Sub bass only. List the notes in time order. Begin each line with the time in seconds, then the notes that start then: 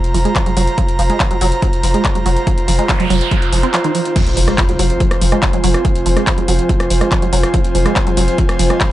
0.04 F1
0.14 F1
0.46 F1
0.57 F1
0.88 F1
0.99 F1
1.31 F1
1.41 F1
1.73 F1
1.83 F1
2.15 F1
2.26 F1
2.58 F1
2.68 F1
3.00 F1
3.10 F1
3.42 F1
3.52 F1
4.27 F1
4.37 F1
4.69 F1
4.79 F1
5.11 F1
5.21 F1
5.53 F1
5.64 F1
5.96 F1
6.06 F1
6.38 F1
6.48 F1
6.80 F1
6.90 F1
7.22 F1
7.33 F1
7.64 F1
7.75 F1
8.07 F1
8.17 F1
8.49 F1
8.59 F1